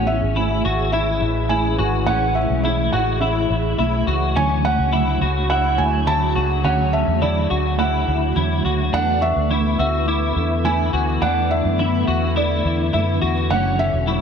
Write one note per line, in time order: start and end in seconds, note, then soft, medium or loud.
0.00 0.20 A1 loud
0.00 4.32 C#3 medium
0.00 4.32 E3 medium
0.00 4.32 G#3 medium
0.00 13.46 A3 medium
0.00 0.36 C#4 loud
0.00 4.32 E4 loud
0.06 0.37 G#4 medium
0.06 0.35 C#5 medium
0.06 0.91 E5 loud
0.12 0.36 E4 soft
0.22 0.63 G#1 medium
0.35 0.64 A3 medium
0.35 0.65 C#4 medium
0.35 0.64 E4 medium
0.35 0.65 E4 medium
0.35 0.65 G#4 medium
0.35 2.54 G#5 medium
0.39 0.62 C#5 medium
0.63 1.19 G#1 medium
0.63 0.93 F#4 medium
0.63 0.94 G#4 medium
0.63 0.93 C#5 medium
0.69 0.93 E4 medium
0.92 1.21 C#4 medium
0.92 1.49 E4 loud
0.92 1.22 E4 medium
0.92 1.52 E5 loud
0.96 1.22 G#4 medium
0.96 1.19 C#5 medium
1.20 1.76 A1 loud
1.20 1.51 G#4 soft
1.20 1.50 C#5 medium
1.26 1.50 E4 soft
1.49 1.78 A3 medium
1.49 1.79 C#4 medium
1.49 1.78 E4 medium
1.49 1.79 E4 medium
1.49 1.79 G#4 loud
1.49 1.90 G#5 loud
1.53 1.76 C#5 medium
1.77 2.06 G#1 loud
1.77 2.07 F#4 medium
1.77 2.08 G#4 medium
1.77 2.07 C#5 medium
1.83 2.07 E4 soft
2.06 2.48 A1 loud
2.06 2.35 A3 medium
2.06 2.36 C#4 medium
2.06 2.65 C#4 medium
2.06 2.36 E4 medium
2.06 2.36 G#4 loud
2.06 2.36 F#5 loud
2.10 2.33 C#5 medium
2.34 2.65 G#4 medium
2.34 2.64 C#5 medium
2.34 2.62 E5 medium
2.40 2.64 E4 soft
2.50 2.91 B1 medium
2.63 2.93 A3 medium
2.63 2.93 C#4 loud
2.63 2.92 E4 medium
2.63 2.94 E4 medium
2.63 2.93 G#4 medium
2.63 2.94 E5 medium
2.67 2.90 C#5 medium
2.91 3.47 A1 medium
2.91 3.21 F#4 medium
2.91 3.23 G#4 medium
2.91 3.21 C#5 medium
2.91 3.22 F#5 medium
2.97 3.21 E4 medium
3.20 3.49 C#4 medium
3.20 3.77 E4 medium
3.20 3.50 E4 medium
3.20 4.03 E5 medium
3.24 3.51 G#4 medium
3.24 3.47 C#5 medium
3.48 3.77 A1 loud
3.48 3.80 G#4 soft
3.48 3.78 C#5 medium
3.54 3.79 E4 soft
3.78 4.06 B1 medium
3.78 4.07 A3 medium
3.78 4.08 C#4 loud
3.78 4.07 E4 medium
3.78 4.08 E4 loud
3.78 4.08 G#4 loud
3.82 4.04 C#5 loud
4.06 4.34 C#2 medium
4.06 4.36 F#4 medium
4.06 4.37 G#4 medium
4.06 4.35 C#5 medium
4.06 4.60 C#6 medium
4.11 4.37 E4 medium
4.35 4.77 D2 loud
4.35 8.89 C#3 medium
4.35 4.64 D3 medium
4.35 4.64 F#3 loud
4.35 8.89 F#3 medium
4.35 4.65 A3 medium
4.35 4.93 C#4 loud
4.35 4.65 D4 medium
4.35 8.89 F#4 medium
4.35 4.64 F#4 medium
4.35 4.66 G#5 loud
4.39 4.62 C#5 medium
4.63 4.92 C#5 medium
4.63 5.48 F#5 loud
4.67 4.93 A3 soft
4.67 4.93 D4 medium
4.78 5.19 C#2 medium
4.92 5.21 D3 medium
4.92 5.22 F#3 loud
4.92 5.22 A3 medium
4.92 5.23 D4 medium
4.92 5.21 E4 medium
4.92 5.21 F#4 medium
4.96 5.19 C#5 loud
5.20 5.76 C#2 medium
5.20 5.50 F#4 medium
5.20 5.51 F#4 medium
5.20 5.49 C#5 medium
5.20 7.40 B5 medium
5.24 5.47 A3 medium
5.24 5.50 D4 medium
5.49 5.78 A3 medium
5.49 5.79 D4 medium
5.49 6.06 E4 loud
5.49 5.78 F#4 medium
5.49 5.80 F#5 loud
5.54 5.76 C#5 medium
5.77 6.33 D2 loud
5.77 6.08 F#4 medium
5.77 6.07 C#5 medium
5.77 6.08 G#5 loud
5.81 6.07 A3 soft
5.81 6.08 D4 soft
6.06 6.35 D3 medium
6.06 6.36 F#3 medium
6.06 6.36 A3 loud
6.06 6.37 D4 loud
6.06 6.35 E4 medium
6.06 6.35 F#4 medium
6.06 6.47 A5 loud
6.10 6.33 C#5 loud
6.34 6.63 C#2 medium
6.34 6.64 D4 medium
6.34 6.64 F#4 medium
6.34 6.65 F#4 medium
6.34 6.64 C#5 medium
6.40 6.64 A3 soft
6.63 7.05 D2 loud
6.63 6.92 D3 medium
6.63 6.93 F#3 medium
6.63 6.93 A3 medium
6.63 7.22 C#4 loud
6.63 6.94 D4 medium
6.63 6.92 F#4 medium
6.63 6.94 F#5 loud
6.67 6.90 C#5 medium
6.91 7.22 F#4 medium
6.91 7.21 C#5 medium
6.91 7.20 E5 medium
6.91 9.11 A5 medium
6.95 7.21 A3 medium
6.95 7.21 D4 medium
7.07 7.48 E2 medium
7.20 7.49 D3 medium
7.20 7.50 F#3 medium
7.20 7.50 A3 medium
7.20 7.51 D4 loud
7.20 7.50 E4 medium
7.20 7.49 F#4 medium
7.20 7.75 D5 medium
7.24 7.47 C#5 loud
7.48 8.05 D2 medium
7.48 7.78 F#4 medium
7.48 7.79 F#4 medium
7.48 7.78 C#5 medium
7.52 7.75 A3 soft
7.52 7.78 D4 medium
7.77 8.06 A3 medium
7.77 8.08 D4 medium
7.77 8.35 E4 loud
7.77 8.32 F#5 medium
7.81 8.07 F#4 medium
7.81 8.04 C#5 medium
8.05 8.35 D2 loud
8.05 8.36 F#4 soft
8.05 8.35 C#5 medium
8.09 8.35 A3 soft
8.09 8.36 D4 medium
8.34 8.63 E2 medium
8.34 8.64 D3 medium
8.34 8.64 F#3 medium
8.34 8.65 A3 medium
8.34 8.65 D4 loud
8.34 8.64 E4 medium
8.34 8.64 F#4 loud
8.39 8.61 C#5 loud
8.63 8.92 D2 medium
8.63 8.93 D4 medium
8.63 8.93 F#4 medium
8.63 8.92 C#5 medium
8.68 8.92 A3 medium
8.92 9.34 E2 loud
8.92 14.21 D3 medium
8.92 9.21 E3 medium
8.92 13.47 E3 medium
8.92 9.22 A3 medium
8.92 13.47 B3 medium
8.92 9.50 D4 medium
8.92 9.22 D4 medium
8.92 13.47 E4 medium
8.92 9.21 A4 loud
8.92 9.23 F#5 loud
8.96 9.18 B4 medium
9.19 9.49 B4 medium
9.19 9.75 E5 loud
9.19 11.40 C#6 medium
9.25 9.50 D4 soft
9.36 9.77 D2 medium
9.49 9.78 E3 medium
9.49 9.79 A3 medium
9.49 9.79 D4 medium
9.49 9.79 E4 medium
9.49 9.79 A4 medium
9.53 9.75 B4 medium
9.77 10.33 D2 medium
9.77 10.08 F#4 medium
9.77 10.08 A4 medium
9.77 10.06 B4 medium
9.77 10.68 E5 loud
9.77 11.97 E6 medium
9.82 10.06 D4 soft
10.05 10.35 A3 medium
10.05 10.36 D4 medium
10.05 10.64 E4 loud
10.05 12.25 D6 medium
10.10 10.36 A4 medium
10.10 10.33 B4 medium
10.34 10.90 E2 loud
10.34 10.65 A4 medium
10.34 10.64 B4 medium
10.40 10.64 D4 soft
10.63 10.93 E3 loud
10.63 10.93 A3 medium
10.63 10.94 D4 medium
10.63 10.93 E4 medium
10.63 10.94 A4 medium
10.63 11.05 G#5 medium
10.67 10.91 B4 loud
10.92 11.20 D2 medium
10.92 11.22 F#4 medium
10.92 11.23 A4 soft
10.92 11.21 B4 medium
10.98 11.22 D4 soft
11.21 11.62 E2 loud
11.21 11.50 E3 medium
11.21 11.51 A3 medium
11.21 11.79 D4 medium
11.21 11.51 D4 medium
11.21 11.51 A4 medium
11.21 11.48 B4 medium
11.21 11.51 F#5 loud
11.49 11.80 A4 medium
11.49 11.78 B4 medium
11.49 12.39 E5 loud
11.55 11.79 D4 medium
11.65 12.05 F#2 loud
11.78 12.07 E3 medium
11.78 12.08 A3 medium
11.78 12.08 D4 medium
11.78 12.07 E4 medium
11.78 12.08 A4 medium
11.82 12.05 B4 medium
12.06 12.62 E2 medium
12.06 12.36 F#4 medium
12.06 12.37 A4 soft
12.06 12.35 B4 medium
12.12 12.36 D4 soft
12.35 12.64 A3 medium
12.35 12.65 D4 medium
12.35 12.92 E4 loud
12.35 12.95 D5 medium
12.39 12.65 A4 medium
12.39 12.62 B4 medium
12.63 12.92 E2 loud
12.63 12.94 A4 soft
12.63 12.92 B4 medium
12.69 12.93 D4 soft
12.92 13.21 F#2 medium
12.92 13.21 E3 medium
12.92 13.22 A3 medium
12.92 13.22 D4 loud
12.92 13.21 E4 medium
12.92 13.22 A4 loud
12.92 13.33 E5 medium
12.96 13.19 B4 medium
13.21 13.49 E2 loud
13.21 13.50 F#4 medium
13.21 13.51 A4 soft
13.21 13.50 B4 medium
13.26 13.51 D4 soft
13.50 13.91 F#1 loud
13.50 13.79 F#3 medium
13.50 14.21 F#3 medium
13.50 13.79 A3 medium
13.50 14.21 A3 medium
13.50 14.07 C#4 loud
13.50 14.21 C#4 medium
13.50 13.80 D4 medium
13.50 14.21 F#4 medium
13.50 13.80 F#4 medium
13.50 13.80 F#5 loud
13.54 13.76 C#5 medium
13.78 14.08 F#4 medium
13.78 14.07 C#5 medium
13.78 14.21 E5 loud
13.84 14.08 D4 medium
13.93 14.21 E1 loud
14.06 14.21 F#3 medium
14.06 14.21 A3 loud
14.06 14.21 D4 medium
14.06 14.21 E4 medium
14.06 14.21 F#4 medium
14.06 14.21 C#6 medium
14.10 14.21 C#5 loud